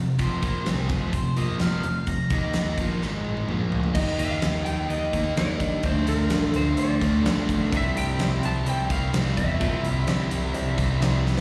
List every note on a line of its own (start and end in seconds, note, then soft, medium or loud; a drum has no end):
0.00 0.18 F1 medium
0.00 0.15 F2 medium
0.00 0.15 C3 medium
0.19 0.41 F1 medium
0.19 0.42 F2 medium
0.19 0.42 C3 medium
0.19 0.42 F3 medium
0.19 0.66 C5 medium
0.19 kick medium
0.19 closed hi-hat medium
0.42 0.65 A#1 medium
0.42 0.66 A#2 medium
0.42 0.66 F3 medium
0.42 0.66 A#3 medium
0.42 kick loud
0.42 closed hi-hat medium
0.66 0.88 C2 medium
0.66 0.89 C3 medium
0.66 0.89 G3 medium
0.66 0.90 C4 loud
0.66 1.13 G#4 medium
0.66 snare loud
0.66 closed hi-hat medium
0.89 1.12 F1 medium
0.89 1.12 F2 medium
0.89 1.13 C3 medium
0.89 1.13 F3 medium
0.89 kick loud
0.89 closed hi-hat soft
1.13 1.35 F1 medium
1.13 1.32 F2 medium
1.13 1.33 C3 medium
1.13 1.37 C5 medium
1.13 kick medium
1.13 closed hi-hat medium
1.37 1.59 A#1 medium
1.37 1.60 A#2 medium
1.37 1.61 F3 medium
1.37 1.61 A#3 medium
1.37 1.60 D#5 medium
1.37 closed hi-hat medium
1.59 1.82 F1 medium
1.59 1.84 F2 medium
1.59 1.84 C3 medium
1.59 1.84 F3 loud
1.59 2.07 F5 medium
1.59 snare medium
1.59 closed hi-hat medium
1.83 2.06 F1 medium
1.83 2.03 F2 medium
1.83 2.04 C3 medium
1.83 closed hi-hat medium
2.07 2.29 F1 medium
2.07 2.27 F2 medium
2.07 2.27 C3 medium
2.07 2.77 A#5 medium
2.07 kick medium
2.07 closed hi-hat medium
2.30 2.75 D#2 medium
2.30 2.78 D#3 medium
2.30 2.78 A#3 medium
2.30 2.78 D#4 medium
2.30 kick loud
2.30 closed hi-hat medium
2.53 snare loud
2.53 closed hi-hat medium
2.78 3.00 A#1 medium
2.78 3.02 A#2 medium
2.78 3.02 F3 medium
2.78 3.02 A#3 medium
2.78 kick medium
2.78 closed hi-hat medium
3.02 3.46 G#1 medium
3.02 3.49 G#2 medium
3.02 3.49 D#3 medium
3.02 3.49 G#3 loud
3.02 snare medium
3.25 high tom medium
3.37 high tom medium
3.48 3.92 A#1 medium
3.48 3.96 A#2 medium
3.48 3.96 F3 medium
3.48 3.96 A#3 loud
3.48 mid tom medium
3.72 floor tom medium
3.83 floor tom medium
3.95 4.14 D#2 medium
3.95 4.66 D#3 medium
3.95 4.66 A#3 medium
3.95 4.66 D#4 medium
3.95 4.65 G4 loud
3.95 4.17 D#5 medium
3.95 kick loud
3.95 crash loud
4.19 4.37 D#2 medium
4.19 4.64 F5 loud
4.19 closed hi-hat medium
4.42 4.61 D#2 medium
4.42 snare loud
4.42 closed hi-hat medium
4.65 4.85 D#2 medium
4.65 5.84 A#3 medium
4.65 5.83 D#4 medium
4.65 5.83 G4 medium
4.65 4.90 G5 medium
4.65 closed hi-hat medium
4.69 5.83 D#3 medium
4.89 5.08 D#2 medium
4.89 5.37 D#5 medium
4.89 closed hi-hat medium
5.13 5.32 D#2 medium
5.13 5.35 D#3 medium
5.13 5.36 A#3 medium
5.13 5.36 D#4 medium
5.13 kick medium
5.13 closed hi-hat medium
5.36 5.55 D#2 medium
5.36 5.83 D#3 medium
5.36 5.83 A#3 medium
5.36 5.84 D#4 medium
5.36 5.81 D5 medium
5.36 snare loud
5.36 closed hi-hat medium
5.60 5.79 G2 medium
5.60 kick medium
5.60 closed hi-hat medium
5.83 6.02 D2 medium
5.83 6.53 D3 medium
5.83 6.54 A3 medium
5.83 6.55 D4 medium
5.83 6.53 F4 medium
5.83 6.09 C5 medium
5.83 kick loud
5.83 closed hi-hat medium
6.07 6.26 D2 medium
6.07 6.44 A#4 medium
6.07 closed hi-hat medium
6.30 6.49 A1 medium
6.30 snare loud
6.30 closed hi-hat medium
6.44 6.56 A4 medium
6.53 6.72 D2 medium
6.53 7.72 D3 medium
6.53 7.72 A3 medium
6.53 7.74 D4 medium
6.53 7.71 F4 medium
6.53 6.79 C5 medium
6.53 closed hi-hat medium
6.77 6.96 D2 medium
6.77 7.46 D5 medium
6.77 closed hi-hat medium
7.01 7.20 D2 medium
7.01 7.22 D3 medium
7.01 7.24 A3 medium
7.01 7.26 D4 medium
7.01 kick medium
7.01 closed hi-hat medium
7.23 7.61 B1 medium
7.23 7.70 D3 medium
7.23 7.71 A3 medium
7.23 7.73 D4 medium
7.23 snare loud
7.23 closed hi-hat medium
7.49 kick medium
7.49 closed hi-hat medium
7.72 7.91 C2 medium
7.72 8.45 C3 medium
7.72 8.44 E3 medium
7.72 8.44 G3 medium
7.72 8.44 C4 loud
7.72 8.10 E4 medium
7.72 8.43 E4 loud
7.72 8.10 C5 medium
7.72 8.11 D5 loud
7.72 kick loud
7.72 closed hi-hat medium
7.77 7.99 E5 medium
7.94 8.14 C2 medium
7.94 8.45 G5 loud
7.94 closed hi-hat medium
8.18 8.37 C2 medium
8.18 8.58 E4 medium
8.18 8.58 C5 medium
8.18 8.59 D5 medium
8.18 snare loud
8.18 closed hi-hat medium
8.42 8.61 C2 medium
8.42 9.60 C3 medium
8.42 9.60 E3 medium
8.42 9.60 G3 medium
8.42 9.62 C4 medium
8.42 9.59 E4 medium
8.42 8.69 A5 medium
8.42 closed hi-hat medium
8.65 8.84 C2 medium
8.65 9.05 E4 medium
8.65 9.05 C5 medium
8.65 9.05 D5 medium
8.65 8.91 G5 loud
8.65 closed hi-hat medium
8.89 9.08 C2 medium
8.89 9.11 C3 medium
8.89 9.13 G3 medium
8.89 9.15 C4 medium
8.89 9.35 F5 medium
8.89 kick medium
8.89 closed hi-hat medium
9.12 9.32 C2 medium
9.12 9.59 C3 medium
9.12 9.60 G3 medium
9.12 9.63 C4 medium
9.12 9.52 E4 medium
9.12 9.52 C5 medium
9.12 9.52 D5 medium
9.12 snare loud
9.12 closed hi-hat medium
9.27 snare soft
9.37 9.55 E2 medium
9.37 11.21 E5 medium
9.37 kick medium
9.37 closed hi-hat medium
9.60 9.79 A#2 loud
9.60 10.30 C3 medium
9.60 10.30 E3 medium
9.60 10.30 G3 medium
9.60 10.30 C4 medium
9.60 9.99 E4 medium
9.60 10.29 E4 loud
9.60 9.99 C5 medium
9.60 9.99 D5 medium
9.60 kick loud
9.60 closed hi-hat medium
9.83 10.02 C2 medium
9.83 closed hi-hat medium
10.07 10.26 G1 medium
10.07 10.45 E4 medium
10.07 10.45 C5 medium
10.07 10.45 D5 loud
10.07 snare loud
10.07 closed hi-hat medium
10.30 10.50 C2 medium
10.30 11.41 C3 medium
10.30 11.41 E3 medium
10.30 11.41 G3 medium
10.30 11.41 C4 medium
10.30 11.41 E4 medium
10.30 closed hi-hat medium
10.54 10.73 C2 medium
10.54 10.92 E4 medium
10.54 10.92 C5 medium
10.54 10.92 D5 loud
10.54 closed hi-hat medium
10.78 10.96 C2 medium
10.78 11.00 C3 medium
10.78 11.01 G3 medium
10.78 11.00 C4 medium
10.78 kick medium
10.78 closed hi-hat medium
11.01 11.38 C2 medium
11.01 11.41 C3 medium
11.01 11.41 G3 medium
11.01 11.41 C4 medium
11.01 11.40 E4 medium
11.01 11.40 C5 medium
11.01 11.40 D5 loud
11.01 snare loud
11.01 closed hi-hat medium
11.27 snare medium
11.37 snare medium